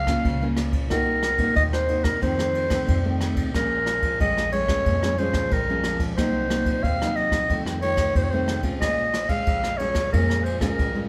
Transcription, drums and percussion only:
0.07 kick, cross-stick, ride
0.25 kick, ride
0.57 cross-stick, ride
0.73 kick, ride
0.90 kick, cross-stick, ride
1.23 cross-stick, ride
1.38 kick, ride
1.56 kick, ride
1.73 cross-stick
1.88 ride
2.04 kick, cross-stick, ride
2.22 kick, ride
2.39 cross-stick
2.55 ride
2.70 kick, cross-stick, ride
2.88 kick, ride
3.21 cross-stick, ride
3.36 kick, ride
3.54 kick, cross-stick, ride
3.86 cross-stick, ride
4.02 kick, ride
4.20 kick, ride
4.37 cross-stick
4.52 ride
4.68 kick, cross-stick, ride
4.86 kick, ride
5.03 cross-stick
5.18 ride
5.34 kick, cross-stick, ride
5.51 kick, ride
5.84 cross-stick, ride
6.00 kick, ride
6.18 kick, cross-stick, ride
6.50 cross-stick, ride
6.66 kick, ride
6.84 kick, ride
7.02 cross-stick
7.16 ride
7.32 kick, cross-stick, ride
7.50 kick, ride
7.66 cross-stick
7.82 ride
7.97 kick, cross-stick, ride
8.15 kick, ride
8.48 cross-stick, ride
8.63 kick, ride
8.81 kick, cross-stick, ride
9.14 cross-stick, ride
9.29 kick, ride
9.47 kick, ride
9.64 cross-stick
9.79 ride
9.95 kick, cross-stick, ride
10.13 kick, ride
10.30 cross-stick
10.46 ride
10.61 kick, cross-stick, ride
10.79 kick, ride

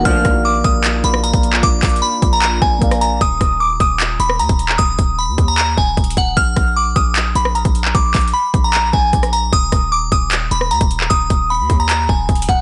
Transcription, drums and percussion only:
0.05 kick, closed hi-hat
0.25 kick, cross-stick, closed hi-hat
0.64 kick, closed hi-hat
0.84 clap, closed hi-hat
1.04 closed hi-hat
1.14 cross-stick
1.24 closed hi-hat
1.33 kick, closed hi-hat
1.43 closed hi-hat
1.53 clap
1.63 kick, closed hi-hat
1.83 kick, clap, closed hi-hat, open hi-hat
1.89 closed hi-hat
1.96 closed hi-hat
2.22 kick, closed hi-hat
2.42 clap, closed hi-hat
2.62 kick
2.82 kick, closed hi-hat
2.91 cross-stick, closed hi-hat
3.01 closed hi-hat
3.21 kick, closed hi-hat
3.41 kick, cross-stick, closed hi-hat
3.80 kick, closed hi-hat
4.00 clap, closed hi-hat
4.20 closed hi-hat
4.30 cross-stick
4.39 closed hi-hat
4.49 kick, closed hi-hat
4.59 closed hi-hat
4.69 clap
4.79 kick, closed hi-hat
4.99 kick, closed hi-hat
5.38 kick, closed hi-hat
5.58 clap, closed hi-hat
5.78 kick
5.97 kick, closed hi-hat
6.04 closed hi-hat
6.10 closed hi-hat
6.17 kick, closed hi-hat
6.37 kick, closed hi-hat
6.56 kick, cross-stick, closed hi-hat
6.96 kick, closed hi-hat
7.16 clap, closed hi-hat
7.35 closed hi-hat
7.45 cross-stick
7.55 closed hi-hat
7.65 kick, closed hi-hat
7.75 closed hi-hat
7.85 clap
7.95 kick, closed hi-hat
8.14 kick, clap, closed hi-hat, open hi-hat
8.21 closed hi-hat
8.28 closed hi-hat
8.54 kick, closed hi-hat
8.74 clap, closed hi-hat
8.93 kick
9.13 kick, closed hi-hat
9.23 cross-stick, closed hi-hat
9.33 closed hi-hat
9.53 kick, closed hi-hat
9.72 kick, cross-stick, closed hi-hat
10.12 kick, closed hi-hat
10.32 clap, closed hi-hat
10.51 closed hi-hat
10.61 cross-stick
10.71 closed hi-hat
10.81 kick, closed hi-hat
10.91 closed hi-hat
11.00 clap
11.10 kick, closed hi-hat
11.30 kick, closed hi-hat
11.70 kick, closed hi-hat
11.89 clap, closed hi-hat
12.09 kick
12.29 kick, closed hi-hat
12.35 closed hi-hat
12.42 closed hi-hat
12.49 kick, closed hi-hat

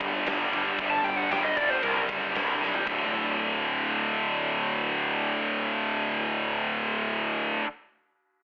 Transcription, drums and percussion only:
0.01 kick, ride
0.26 snare, ride
0.53 ride
0.79 kick, ride
1.05 ride
1.31 snare, ride
1.57 kick, ride
1.83 ride
2.09 kick, ride
2.35 snare, ride
2.63 snare
2.74 floor tom
2.87 kick, crash

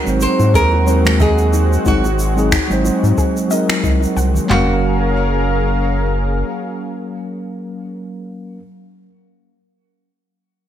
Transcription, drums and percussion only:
0.06 high conga, shaker
0.21 shaker
0.39 high bongo, shaker
0.54 kick, shaker
0.72 high bongo
0.87 shaker
1.05 finger snap, high conga, low conga, shaker
1.20 kick, high bongo, low conga, shaker
1.38 shaker
1.53 high bongo, shaker
1.73 shaker
1.86 kick, high conga, shaker
2.04 high bongo, shaker
2.19 shaker
2.37 high bongo, shaker
2.52 finger snap, kick, shaker
2.70 high conga, shaker
2.84 high bongo, shaker
3.04 shaker
3.17 kick, high bongo, shaker
3.37 shaker
3.51 shaker
3.69 finger snap, high bongo, high conga, shaker
3.84 kick, shaker
4.01 high bongo, shaker
4.17 shaker
4.34 low conga, shaker
4.50 snare, clap, floor tom

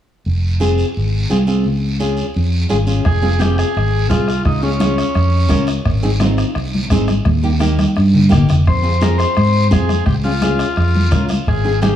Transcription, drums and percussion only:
0.25 long guiro
0.61 short guiro
0.78 short guiro
0.94 long guiro
1.30 short guiro
1.47 short guiro
1.64 long guiro
2.00 short guiro
2.17 short guiro
2.34 long guiro
2.69 short guiro
2.87 short guiro
3.05 bombo low, bombo rim, high conga, long guiro
3.40 bombo rim, high conga, short guiro
3.58 bombo rim, short guiro
3.75 bombo rim, high conga, long guiro
4.10 bombo low, bombo rim, high conga, short guiro
4.28 bombo rim, short guiro
4.45 bombo low, bombo rim, high conga, long guiro
4.80 bombo rim, high conga, short guiro
4.98 bombo rim, short guiro
5.15 bombo rim, high conga, long guiro
5.50 bombo low, bombo rim, high conga, short guiro
5.67 bombo rim, short guiro
5.85 bombo low, bombo rim, high conga, long guiro
6.20 bombo rim, high conga, short guiro
6.38 bombo rim, short guiro
6.55 bombo rim, high conga, long guiro
6.75 high conga
6.90 bombo low, bombo rim, high conga, short guiro
7.08 bombo rim, high conga, short guiro
7.25 bombo low, bombo rim, high conga, long guiro
7.61 bombo rim, high conga, short guiro
7.79 bombo rim, high conga, short guiro
7.96 bombo rim, long guiro
8.14 low conga
8.31 bombo low, bombo rim, low conga, short guiro
8.49 bombo rim, low conga, short guiro
8.66 bombo low, bombo rim, high conga, long guiro
9.01 bombo rim, high conga, short guiro
9.19 bombo rim, short guiro
9.35 bombo rim, high conga, long guiro
9.71 bombo low, bombo rim, high conga, short guiro
9.89 bombo rim, high conga, short guiro
10.06 bombo low, bombo rim, high conga, long guiro
10.42 bombo rim, high conga, short guiro
10.59 bombo rim, short guiro
10.76 bombo rim, high conga, long guiro
10.95 high conga
11.11 bombo low, bombo rim, high conga, short guiro
11.29 bombo rim, high conga, short guiro
11.46 bombo low, bombo rim, high conga, long guiro
11.82 bombo rim, high conga, short guiro

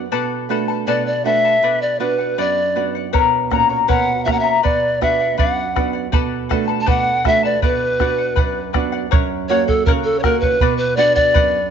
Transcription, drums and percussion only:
3.14 bombo low
3.51 bombo rim, bombo low
3.89 bombo low
4.28 bombo rim, bombo low
4.65 bombo low
5.02 bombo rim, bombo low
5.39 bombo low
5.76 bombo rim, bombo low
6.13 bombo low
6.51 bombo rim, bombo low
6.88 bombo low
7.25 bombo rim, bombo low
7.62 bombo low
8.00 bombo rim, bombo low
8.37 bombo low
8.74 bombo rim, bombo low
9.13 bombo low
9.69 bombo low
9.87 bombo low
10.24 bombo rim, bombo low
10.42 bombo low
10.61 bombo low
11.17 bombo low
11.35 bombo low

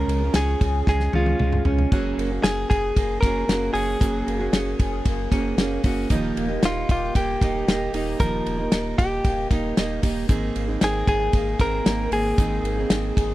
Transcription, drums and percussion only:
0.09 ride
0.34 snare, ride
0.61 kick, ride
0.87 kick, snare
1.00 snare
1.13 high tom
1.26 high tom
1.40 mid tom
1.52 mid tom
1.65 floor tom
1.79 floor tom
1.92 kick, splash
2.19 ride
2.44 snare, ride
2.71 kick, ride
2.97 kick, ride
3.23 kick, snare, ride
3.49 snare, ride
3.75 open hi-hat, ride
4.01 kick, hi-hat pedal, ride
4.28 ride
4.53 snare, ride
4.80 kick, ride
5.05 kick, ride
5.32 kick, snare, ride
5.58 snare, ride
5.84 kick, open hi-hat, ride
6.10 kick, hi-hat pedal, ride
6.37 ride
6.63 snare, ride
6.89 kick, ride
7.15 kick, ride
7.41 kick, snare, ride
7.68 snare, ride
7.94 open hi-hat, ride
8.20 kick, hi-hat pedal, ride
8.46 ride
8.72 snare, ride
8.99 kick, ride
9.24 kick, ride
9.50 kick, snare, ride
9.77 snare, ride
10.03 kick, open hi-hat, ride
10.29 kick, hi-hat pedal, ride
10.56 ride
10.81 snare, ride
11.07 kick, ride
11.33 kick, ride
11.59 kick, snare, ride
11.86 snare, ride
12.12 open hi-hat, ride
12.38 kick, hi-hat pedal, ride
12.65 ride
12.90 snare, ride
13.17 kick, ride

